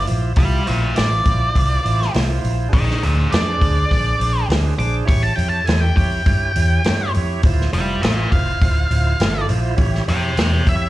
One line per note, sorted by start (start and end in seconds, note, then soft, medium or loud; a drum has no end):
0.05 0.33 E4 loud
0.05 0.33 F4 loud
0.05 0.33 C5 loud
0.05 open hi-hat medium
0.10 0.31 A#1 medium
0.36 0.59 C2 medium
0.36 0.63 E4 loud
0.36 0.63 F4 medium
0.36 0.63 G4 loud
0.36 0.67 D5 loud
0.36 0.66 G5 medium
0.36 kick loud
0.36 open hi-hat medium
0.66 0.90 A#1 medium
0.66 0.93 E4 medium
0.66 0.93 F4 medium
0.66 0.93 C5 medium
0.66 0.95 D5 medium
0.66 0.96 F5 medium
0.66 open hi-hat medium
0.95 1.20 A1 medium
0.95 1.22 E4 medium
0.95 1.22 F4 medium
0.95 1.22 C5 medium
0.95 2.11 D5 loud
0.95 snare loud
0.95 open hi-hat medium
1.23 1.48 A#1 medium
1.23 1.51 E4 medium
1.23 1.51 F4 medium
1.23 1.51 C5 loud
1.23 kick medium
1.23 open hi-hat medium
1.54 1.78 C2 medium
1.54 1.81 E4 medium
1.54 1.81 F4 medium
1.54 1.81 C5 medium
1.54 kick medium
1.54 open hi-hat medium
1.83 2.07 A1 medium
1.83 2.11 E4 medium
1.83 2.10 F4 medium
1.83 2.10 C5 loud
1.83 open hi-hat medium
2.02 snare soft
2.14 2.37 C2 medium
2.14 2.40 E4 medium
2.14 2.40 F4 medium
2.14 2.39 C5 loud
2.14 snare loud
2.14 open hi-hat medium
2.41 2.66 A#1 medium
2.41 2.69 E4 loud
2.41 2.69 F4 loud
2.41 2.68 C5 loud
2.41 open hi-hat medium
2.69 2.97 D4 loud
2.69 2.97 G#4 medium
2.69 2.97 C5 loud
2.73 2.95 A#1 loud
2.73 3.03 A#4 medium
2.73 3.02 G5 loud
2.73 kick loud
2.73 open hi-hat medium
2.90 snare soft
2.98 3.27 D4 medium
2.98 3.27 G#4 medium
2.98 3.27 C5 medium
3.03 3.25 D2 medium
3.03 3.31 D5 medium
3.03 3.32 F5 medium
3.03 open hi-hat medium
3.29 3.54 F2 medium
3.29 3.57 D4 medium
3.29 3.55 G#4 medium
3.29 3.57 C5 medium
3.29 4.46 D5 loud
3.29 open hi-hat medium
3.34 snare loud
3.57 3.86 D4 medium
3.57 3.85 G#4 medium
3.57 3.86 C5 loud
3.61 3.84 D2 medium
3.61 kick medium
3.61 open hi-hat medium
3.88 4.13 A#1 medium
3.88 4.16 D4 medium
3.88 4.16 G#4 medium
3.88 4.16 C5 medium
3.88 kick medium
3.92 open hi-hat medium
4.18 4.42 A#1 medium
4.18 4.46 D4 medium
4.18 4.46 G#4 medium
4.18 4.46 C5 loud
4.18 open hi-hat medium
4.47 4.71 D2 loud
4.47 4.75 D4 medium
4.47 4.75 G#4 medium
4.47 4.75 C5 medium
4.47 open hi-hat medium
4.52 snare loud
4.78 5.01 A#1 medium
4.78 5.05 D4 medium
4.78 5.05 G#4 medium
4.78 5.05 C5 loud
4.78 4.93 D6 loud
4.78 open hi-hat medium
5.05 5.31 A1 medium
5.05 5.33 E4 loud
5.05 5.34 G4 medium
5.05 5.33 C#5 loud
5.05 5.23 C#6 loud
5.05 kick loud
5.05 open hi-hat medium
5.23 5.36 A5 medium
5.36 5.60 F2 medium
5.36 5.63 E4 medium
5.36 5.63 G4 medium
5.36 5.63 C#5 medium
5.36 5.49 G5 medium
5.36 open hi-hat medium
5.49 5.66 A5 medium
5.64 5.92 E4 medium
5.64 5.92 G4 medium
5.64 5.92 A4 medium
5.64 5.80 G#5 medium
5.64 open hi-hat medium
5.68 5.90 E2 medium
5.68 snare loud
5.80 5.95 G5 medium
5.96 6.19 F2 medium
5.96 6.22 E4 loud
5.96 6.22 G4 medium
5.96 6.23 C#5 loud
5.96 7.11 G5 medium
5.96 kick medium
5.96 open hi-hat medium
6.25 6.48 G2 medium
6.25 6.52 E4 medium
6.25 6.52 G4 medium
6.25 6.52 C#5 medium
6.25 kick medium
6.25 open hi-hat medium
6.56 6.78 E2 medium
6.56 6.82 E4 medium
6.56 6.83 G4 medium
6.56 6.82 C#5 medium
6.56 open hi-hat medium
6.84 7.07 G2 loud
6.84 7.11 E4 medium
6.84 7.12 G4 medium
6.84 7.12 C#5 loud
6.84 snare loud
6.84 open hi-hat medium
7.14 7.37 F2 medium
7.14 7.42 E4 loud
7.14 7.42 G4 loud
7.14 7.42 C#5 loud
7.14 open hi-hat medium
7.43 7.66 D1 loud
7.43 7.71 E4 loud
7.43 7.71 F4 loud
7.43 7.71 C5 loud
7.43 kick loud
7.43 open hi-hat medium
7.61 snare soft
7.73 7.95 F1 medium
7.73 8.01 D5 medium
7.73 8.02 G5 loud
7.73 open hi-hat medium
7.78 8.02 E4 medium
7.78 8.02 F4 medium
7.78 8.02 C5 medium
8.02 8.25 A1 medium
8.02 8.29 E4 medium
8.02 8.30 F4 medium
8.02 8.29 C5 medium
8.02 8.30 D5 medium
8.02 8.31 F5 medium
8.02 snare loud
8.02 open hi-hat medium
8.32 8.54 F1 medium
8.32 8.59 E4 loud
8.32 8.60 F4 medium
8.32 8.60 C5 loud
8.32 9.46 F5 medium
8.32 kick medium
8.32 open hi-hat medium
8.61 8.83 D1 loud
8.61 8.88 E4 medium
8.61 8.88 F4 medium
8.61 8.88 C5 medium
8.61 kick medium
8.61 open hi-hat medium
8.90 9.12 D1 medium
8.90 9.17 E4 medium
8.90 9.16 F4 medium
8.90 9.17 C5 medium
8.90 open hi-hat medium
9.20 9.42 G1 loud
9.20 9.47 E4 medium
9.20 9.46 F4 medium
9.20 9.47 A4 loud
9.20 snare loud
9.20 open hi-hat medium
9.47 9.72 A#1 medium
9.47 9.75 E4 loud
9.47 9.75 F4 loud
9.47 9.75 C5 loud
9.47 open hi-hat medium
9.76 10.00 A1 loud
9.76 10.04 E4 loud
9.76 10.04 G4 loud
9.76 10.04 C#5 loud
9.76 kick loud
9.76 open hi-hat medium
9.94 snare soft
10.08 10.30 F2 medium
10.08 10.35 E4 medium
10.08 10.35 G4 medium
10.08 10.35 C#5 medium
10.08 10.38 E5 medium
10.08 10.37 G5 loud
10.08 open hi-hat medium
10.37 10.59 E2 medium
10.37 10.65 E4 medium
10.37 10.65 G4 medium
10.37 10.65 C#5 medium
10.37 10.66 E5 medium
10.37 10.68 G5 medium
10.37 snare loud
10.37 open hi-hat medium
10.67 10.89 F2 loud
10.67 10.89 E4 loud
10.67 10.89 G4 medium
10.67 10.89 C#5 loud
10.67 10.89 E5 loud
10.67 kick medium
10.67 open hi-hat medium